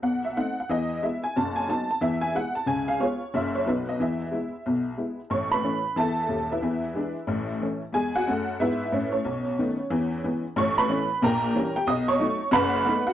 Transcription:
0.02 0.31 B1 soft
0.02 0.31 B2 medium
0.02 0.23 F#5 medium
0.25 0.37 E5 medium
0.37 0.55 A3 soft
0.37 0.55 C4 soft
0.37 0.55 D#4 soft
0.37 0.58 F#5 medium
0.60 0.70 F#5 medium
0.69 0.97 E2 medium
0.69 0.97 E3 medium
0.69 1.03 D#5 medium
1.02 1.20 G#3 soft
1.02 1.21 B3 soft
1.02 1.21 E4 soft
1.02 1.23 E5 medium
1.24 1.36 G#5 medium
1.36 1.64 F#1 medium
1.36 1.64 F#2 medium
1.36 1.56 A5 medium
1.56 1.68 G#5 medium
1.68 1.86 F#3 soft
1.68 1.87 B3 soft
1.68 1.87 D#4 soft
1.68 1.89 A5 medium
1.91 2.01 A5 medium
2.01 2.29 E2 medium
2.01 2.29 E3 medium
2.01 2.22 E5 medium
2.21 2.34 G#5 medium
2.35 2.53 G#3 soft
2.35 2.53 B3 soft
2.35 2.53 E4 soft
2.35 2.55 F#5 medium
2.55 2.68 A5 medium
2.66 2.95 C#2 medium
2.66 2.95 C#3 medium
2.66 2.88 G#5 medium
2.88 3.00 F5 medium
3.00 3.18 G#3 soft
3.00 3.19 B3 soft
3.00 3.19 F4 soft
3.00 3.33 C#5 medium
3.34 3.62 F#1 medium
3.34 3.62 F#2 medium
3.34 3.52 F#3 soft
3.34 3.52 A#3 soft
3.34 3.53 F#4 soft
3.34 3.55 E5 medium
3.55 3.67 C#5 medium
3.66 3.95 B1 medium
3.66 3.94 B2 medium
3.66 3.84 F#3 soft
3.66 3.85 B3 soft
3.66 3.86 D#4 soft
3.66 3.87 B4 medium
3.89 4.00 D#5 medium
3.99 4.27 E2 medium
3.99 4.28 E3 medium
3.99 5.19 E5 medium
4.32 4.50 G#3 soft
4.32 4.51 B3 soft
4.32 4.50 E4 soft
4.66 4.94 B1 medium
4.66 4.94 B2 medium
4.98 5.16 G#3 soft
4.98 5.16 B3 soft
4.98 5.17 E4 soft
5.30 5.58 A1 medium
5.30 5.59 A2 medium
5.30 5.51 C#5 medium
5.30 5.51 C#6 medium
5.52 5.95 B4 medium
5.52 5.97 B5 medium
5.63 5.82 E3 soft
5.63 5.82 A3 soft
5.63 5.82 C#4 soft
5.96 6.25 E2 medium
5.96 6.24 E3 medium
5.96 6.47 A4 medium
5.96 6.47 E5 medium
5.96 6.50 A5 loud
6.28 6.55 D#1 medium
6.28 6.55 D#2 medium
6.51 7.79 E4 medium
6.51 7.79 B4 soft
6.51 7.82 E5 medium
6.62 6.90 E2 medium
6.62 6.90 E3 medium
6.95 7.13 E3 soft
6.95 7.13 G#3 soft
6.95 7.14 D4 medium
7.27 7.56 A1 medium
7.27 7.56 A2 medium
7.61 7.79 E3 soft
7.61 7.80 A3 soft
7.61 7.80 C#4 soft
7.93 8.19 E2 medium
7.93 8.21 G#3 medium
7.93 8.13 G#4 medium
7.93 8.14 G#5 medium
8.15 8.58 F#4 medium
8.15 8.60 F#5 loud
8.27 8.53 F#2 medium
8.27 8.54 A3 medium
8.60 8.86 G#2 medium
8.60 8.87 B3 medium
8.60 9.10 E4 medium
8.60 9.10 B4 medium
8.60 9.13 E5 medium
8.92 9.19 A2 medium
8.92 9.12 C#4 medium
9.12 10.40 C#4 soft
9.12 10.44 C#5 medium
9.24 9.53 B1 medium
9.24 9.53 B2 medium
9.59 9.77 D#3 soft
9.59 9.77 A3 medium
9.59 9.77 B3 medium
9.90 10.19 E2 medium
9.90 10.19 E3 medium
10.24 10.42 E3 medium
10.24 10.42 G#3 soft
10.24 10.43 B3 soft
10.56 10.85 A1 medium
10.56 10.84 A2 medium
10.56 10.77 C#5 medium
10.56 10.78 C#6 loud
10.78 11.20 B4 medium
10.78 11.23 B5 loud
10.89 11.07 E3 medium
10.89 11.07 A3 medium
10.89 11.07 C#4 medium
11.22 11.50 A#1 medium
11.22 11.50 A#2 loud
11.22 11.73 A#4 medium
11.22 11.73 G5 medium
11.22 11.76 A#5 loud
11.55 11.73 E3 medium
11.55 11.74 G3 medium
11.55 11.74 C#4 medium
11.76 11.88 G4 medium
11.76 11.88 G5 loud
11.87 12.15 B1 medium
11.87 12.15 B2 medium
11.87 12.07 D#5 medium
11.87 12.08 D#6 loud
12.08 12.51 C#5 medium
12.08 12.54 C#6 loud
12.19 12.38 F#3 medium
12.19 12.38 A3 medium
12.19 12.38 D#4 medium
12.51 12.81 F#1 medium
12.51 12.80 F#2 loud
12.51 13.03 B4 loud
12.51 13.03 F#5 medium
12.51 13.06 B5 loud
12.86 13.04 A3 medium
12.86 13.04 B3 medium
12.86 13.05 D#4 medium
13.07 13.13 F#4 medium
13.07 13.13 F#5 loud

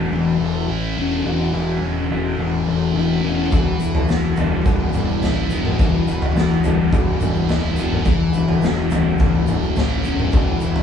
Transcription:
0.00 0.10 E1 medium
0.00 0.11 E3 medium
0.00 0.39 A3 medium
0.00 0.95 C#4 medium
0.00 0.69 E4 medium
0.12 0.39 E1 medium
0.12 1.24 E3 medium
0.40 0.67 E1 medium
0.40 1.82 A3 medium
0.68 0.95 A1 medium
0.68 1.53 E4 medium
0.97 1.24 E1 medium
0.97 1.81 C#4 medium
1.25 1.52 E1 medium
1.25 2.38 E3 medium
1.53 1.80 E1 medium
1.53 2.95 E4 medium
1.81 2.08 E1 medium
1.81 3.23 C#4 medium
2.10 2.37 E1 medium
2.10 2.66 A3 medium
2.38 2.66 E1 medium
2.38 3.52 E3 medium
2.67 2.94 E1 medium
2.67 3.52 A3 medium
2.95 3.22 E1 medium
2.95 3.80 E4 medium
3.23 3.50 E1 medium
3.23 3.52 C#4 medium
3.51 3.79 E1 medium
3.51 4.64 E3 medium
3.51 kick loud
3.51 floor tom medium
3.51 shaker medium
3.80 4.07 E1 medium
3.80 5.21 E4 medium
3.80 shaker medium
3.95 floor tom medium
4.08 4.35 E1 medium
4.08 5.49 B3 medium
4.08 snare medium
4.08 shaker medium
4.37 4.64 E1 medium
4.37 4.93 G3 medium
4.37 floor tom medium
4.37 shaker medium
4.64 4.93 E1 medium
4.64 5.79 E3 medium
4.64 kick loud
4.64 floor tom medium
4.64 mid tom medium
4.64 shaker medium
4.93 5.21 E1 medium
4.93 6.36 G3 medium
4.93 mid tom medium
4.93 shaker medium
5.08 shaker soft
5.22 5.49 A1 medium
5.22 6.07 E4 medium
5.22 snare medium
5.22 floor tom medium
5.22 shaker medium
5.50 5.77 E1 medium
5.50 6.34 B3 medium
5.50 shaker medium
5.65 mid tom medium
5.79 6.06 E1 medium
5.79 6.92 E3 medium
5.79 kick loud
5.79 floor tom medium
5.79 shaker medium
6.07 6.34 E1 medium
6.07 7.48 E4 medium
6.07 shaker medium
6.22 floor tom medium
6.35 6.62 E1 medium
6.35 7.76 B3 medium
6.35 snare medium
6.35 shaker medium
6.64 6.91 E1 medium
6.64 7.19 G3 medium
6.64 floor tom medium
6.64 shaker medium
6.92 7.19 E1 medium
6.92 8.05 E3 medium
6.92 kick loud
6.92 floor tom medium
6.92 mid tom medium
6.92 shaker medium
7.20 7.48 E1 medium
7.20 8.06 G3 medium
7.20 mid tom medium
7.20 shaker medium
7.35 shaker soft
7.49 7.76 E1 medium
7.49 8.34 E4 medium
7.49 snare medium
7.49 floor tom medium
7.49 shaker medium
7.76 8.05 E1 medium
7.76 8.06 B3 medium
7.76 shaker medium
7.92 mid tom medium
8.05 8.33 E1 medium
8.05 9.18 E3 medium
8.05 kick loud
8.05 floor tom medium
8.05 shaker medium
8.34 8.61 E1 medium
8.34 9.75 E4 medium
8.34 shaker loud
8.48 floor tom medium
8.62 8.90 E1 medium
8.62 10.03 C#4 medium
8.62 snare medium
8.62 shaker medium
8.91 9.18 E1 medium
8.91 9.46 A3 medium
8.91 floor tom medium
8.91 shaker medium
9.19 9.46 E1 medium
9.19 10.32 E3 medium
9.19 kick loud
9.19 floor tom medium
9.19 mid tom medium
9.19 shaker medium
9.47 9.74 E1 medium
9.47 10.83 A3 medium
9.47 mid tom medium
9.47 shaker medium
9.62 shaker soft
9.76 10.03 A1 medium
9.76 10.60 E4 medium
9.76 snare medium
9.76 floor tom medium
9.76 shaker medium
10.04 10.31 E1 medium
10.04 10.83 C#4 medium
10.04 shaker medium
10.19 mid tom medium
10.32 10.60 E1 medium
10.32 10.83 E3 medium
10.32 kick loud
10.32 floor tom medium
10.32 shaker medium
10.61 10.83 E1 medium
10.61 10.83 E4 medium
10.61 shaker medium
10.75 floor tom medium
10.75 shaker soft

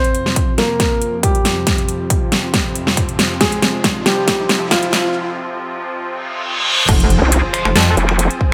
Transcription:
0.00 6.85 F2 medium
0.00 6.85 C3 medium
0.00 6.85 F3 medium
0.00 0.50 C4 medium
0.00 0.50 C5 medium
0.00 riser medium
0.04 closed hi-hat soft
0.15 closed hi-hat medium
0.26 snare soft
0.36 kick loud
0.36 closed hi-hat medium
0.58 1.15 A#3 medium
0.58 1.15 A#4 medium
0.58 snare medium
0.58 closed hi-hat medium
0.80 kick loud
0.80 snare medium
0.80 closed hi-hat medium
1.02 closed hi-hat medium
1.23 3.32 G3 medium
1.23 3.33 G4 medium
1.23 kick medium
1.23 closed hi-hat medium
1.35 closed hi-hat soft
1.45 snare medium
1.45 open hi-hat loud
1.67 kick loud
1.67 snare medium
1.67 closed hi-hat medium
1.78 closed hi-hat soft
1.89 closed hi-hat medium
2.10 kick loud
2.10 closed hi-hat medium
2.32 snare medium
2.32 closed hi-hat medium
2.54 kick medium
2.54 snare medium
2.54 closed hi-hat medium
2.75 closed hi-hat medium
2.87 snare medium
2.97 kick loud
2.97 closed hi-hat medium
3.09 closed hi-hat soft
3.19 snare medium
3.19 open hi-hat medium
3.41 3.98 G#3 medium
3.41 3.98 G#4 loud
3.41 kick loud
3.41 snare medium
3.41 closed hi-hat medium
3.52 closed hi-hat soft
3.62 snare medium
3.62 closed hi-hat medium
3.84 kick loud
3.84 snare medium
3.84 closed hi-hat medium
4.06 4.63 G3 medium
4.06 4.63 G4 loud
4.06 snare medium
4.06 closed hi-hat medium
4.28 kick loud
4.28 snare medium
4.28 closed hi-hat medium
4.49 snare medium
4.49 closed hi-hat medium
4.71 5.15 F3 medium
4.71 5.15 F4 medium
4.71 kick loud
4.71 snare medium
4.71 closed hi-hat medium
4.83 closed hi-hat soft
4.93 snare medium
4.93 open hi-hat medium
6.02 reverse cymbal medium
6.89 7.20 F1 loud
6.89 8.54 F3 medium
6.89 8.54 C4 medium
6.89 8.54 G#4 medium
6.89 kick loud
6.89 closed hi-hat medium
6.89 crash loud
6.89 impact medium
7.00 closed hi-hat soft
7.10 closed hi-hat medium
7.22 7.42 C2 loud
7.32 closed hi-hat medium
7.54 7.65 G#3 medium
7.54 7.65 F4 medium
7.54 7.65 C5 loud
7.54 finger snap medium
7.54 open hi-hat loud
7.65 7.74 F1 medium
7.65 finger snap medium
7.75 7.96 F2 loud
7.75 snare loud
7.75 closed hi-hat medium
7.97 8.29 F1 loud
7.97 closed hi-hat medium
8.09 finger snap medium
8.19 closed hi-hat medium
8.31 closed hi-hat soft
8.41 kick medium

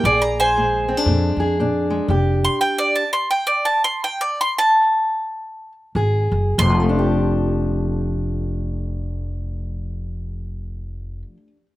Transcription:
0.04 0.91 A#1 medium
0.04 0.52 A#2 medium
0.04 1.39 G#4 medium
0.04 0.21 D5 medium
0.22 0.38 A#5 medium
0.40 1.38 C5 medium
0.40 1.39 G#5 medium
0.57 1.03 A#2 medium
0.57 1.89 G#3 medium
0.89 0.97 C4 medium
0.97 1.58 D4 soft
1.06 1.32 F2 medium
1.06 1.54 A#2 medium
1.37 1.98 F2 medium
1.37 2.08 G#4 medium
1.60 2.06 A#2 medium
1.60 3.03 D4 medium
1.90 2.10 G#3 medium
2.08 2.46 F1 medium
2.08 2.53 F2 medium
2.08 3.03 G4 medium
2.45 2.60 C6 medium
2.61 2.78 G5 medium
2.78 2.95 D5 medium
2.95 3.12 A5 medium
3.13 3.30 C6 medium
3.31 3.48 G5 medium
3.47 3.65 D5 medium
3.65 3.83 A5 medium
3.84 4.02 C6 medium
4.04 4.21 G5 medium
4.21 4.39 D5 medium
4.41 4.58 C6 medium
4.58 5.72 A5 loud
5.95 6.29 G#1 medium
5.95 6.54 F#2 medium
5.95 6.56 G#4 medium
6.32 6.55 F#1 medium
6.58 11.21 F1 medium
6.58 11.26 F2 medium
6.58 11.22 C6 loud
6.70 11.37 F3 medium
6.80 11.47 A3 medium
6.89 11.56 D4 medium
6.99 11.66 G4 medium

